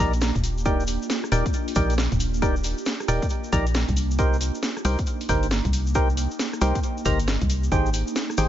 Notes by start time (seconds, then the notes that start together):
Already playing: A#3 D4 F4 G4
0.00 A#1 D#4 G4 A#4 D5 A#5
0.13 closed hi-hat, shaker
0.21 snare, shaker
0.35 D#1, kick, closed hi-hat, shaker
0.44 open hi-hat, shaker
0.58 shaker
0.65 D#4 G4 A#4 D5 G5, kick, closed hi-hat, shaker
0.80 shaker
0.87 open hi-hat, shaker
1.02 shaker
1.10 snare, shaker
1.24 cross-stick, shaker
1.32 D#1 D#4 G4 A#4 D5 G5, open hi-hat, shaker
1.46 kick, closed hi-hat, shaker
1.53 closed hi-hat, shaker
1.68 open hi-hat, shaker
1.75 A#1 D#4 G4 A#4 D5 G5, kick, open hi-hat, shaker
1.90 closed hi-hat, shaker
1.98 snare, shaker
2.12 D#1, kick, closed hi-hat, shaker
2.20 open hi-hat, shaker
2.34 shaker
2.42 D#4 G4 A#4 D5 G5, kick, closed hi-hat, shaker
2.56 shaker
2.64 open hi-hat, shaker
2.78 shaker
2.86 snare, shaker
3.00 cross-stick, shaker
3.08 D#1 D#4 G4 A#4 D5 G5, open hi-hat, shaker
3.22 kick, closed hi-hat, shaker
3.29 closed hi-hat, shaker
3.44 shaker
3.52 A#1 D#4 G4 A#4 D5 A#5, kick, open hi-hat, shaker
3.66 closed hi-hat, shaker
3.74 snare, shaker
3.88 C2, kick, closed hi-hat, shaker
3.96 A#3 D#4, open hi-hat, shaker
4.11 shaker
4.19 D#4 G4 A#4 C5 G5, kick, closed hi-hat, shaker
4.33 shaker
4.41 open hi-hat, shaker
4.55 shaker
4.63 snare, shaker
4.77 cross-stick, shaker
4.85 C2 D#4 G4 A#4 C5 G5, open hi-hat, shaker
4.99 kick, closed hi-hat, shaker
5.06 closed hi-hat, shaker
5.21 open hi-hat, shaker
5.29 G1 D#4 G4 A#4 C5 G5, kick, open hi-hat, shaker
5.43 closed hi-hat, shaker
5.51 snare, shaker
5.65 C2, kick, closed hi-hat, shaker
5.73 open hi-hat, shaker
5.87 shaker
5.95 D#4 G4 A#4 C5 G5, kick, closed hi-hat, shaker
6.10 shaker
6.17 open hi-hat, shaker
6.31 shaker
6.39 snare, shaker
6.53 cross-stick, shaker
6.61 C2 D#4 G4 A#4 C5 G5, open hi-hat, shaker
6.75 kick, closed hi-hat, shaker
6.83 closed hi-hat, shaker
6.97 shaker
7.05 G1 D#4 G4 A#4 C5 A#5, kick, open hi-hat, shaker
7.19 closed hi-hat, shaker
7.27 snare, shaker
7.41 C2, kick, closed hi-hat, shaker
7.50 open hi-hat, shaker
7.63 shaker
7.72 G#1 C4 D#4 G4 G#4 C5 G5, kick, closed hi-hat, shaker
7.86 shaker
7.94 open hi-hat, shaker
8.07 shaker
8.16 snare, shaker
8.30 cross-stick, shaker
8.38 G#1 D#4 G4 G#4 C5 G5, open hi-hat, shaker